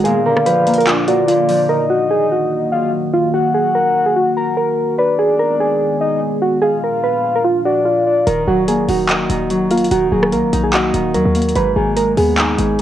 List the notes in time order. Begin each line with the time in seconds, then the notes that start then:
Already playing: B3 D#4
0.04 A#2 D3 F3 F4 G#4 F5, closed hi-hat
0.26 D3 A#4
0.36 cross-stick
0.46 F3 B4, closed hi-hat
0.67 A#3, closed hi-hat
0.73 closed hi-hat
0.78 A#4, closed hi-hat
0.87 D4 F4, clap, closed hi-hat
1.08 A#2 F#4 D5, closed hi-hat
1.28 D3 F4, closed hi-hat
1.49 F3 D5, open hi-hat
1.69 D#3 F#3 A#3 F#4 A#4 D#5
1.90 F#4
2.11 G#4
2.32 F#4
2.72 F5
3.14 F4
3.34 F#4 F#5
3.54 G#4
3.75 A#4
4.06 G#4
4.16 F#4
4.37 A#5
4.57 A#4
4.98 D#3 G#3 B3 G#4 B4 D5
5.19 G#4
5.39 A#4
5.60 G#4
6.01 D#5
6.42 F#4
6.62 A#2 F3 D4 F4 G#4 F5
6.84 A#4
7.04 B4
7.36 A#4
7.44 F4
7.65 F#4 D5
7.85 F4
8.06 D5
8.27 D#1 D#3 A#4, closed hi-hat
8.47 D#1 F#3 F#4
8.68 A#3 G#4, closed hi-hat
8.89 D#1 D#4 F#4, open hi-hat
9.09 D#5, clap, closed hi-hat
9.30 D#1 D#3, closed hi-hat
9.50 F#3, closed hi-hat
9.71 A#3 F4, closed hi-hat, open hi-hat
9.78 closed hi-hat
9.84 closed hi-hat
9.91 D#1 D#3 F#4, closed hi-hat
10.12 D#1 F#3 G#4
10.23 cross-stick
10.32 A#1 A#3 A#4, closed hi-hat
10.43 D#1
10.53 A#1 D#4, closed hi-hat
10.64 G#4
10.74 F#4 D#5, clap, closed hi-hat
10.94 D#1 D#3, closed hi-hat
11.15 D#2 F#3 A#4, closed hi-hat
11.26 D#2
11.35 A#3, closed hi-hat, open hi-hat
11.42 closed hi-hat
11.49 closed hi-hat
11.56 G#1 G#2 B4, closed hi-hat
11.76 G#1 D#3 G#4
11.97 G#3 A#4, closed hi-hat
12.17 D#2 B3 G#4, open hi-hat
12.38 D#4, clap, closed hi-hat
12.58 G#1 G#2, closed hi-hat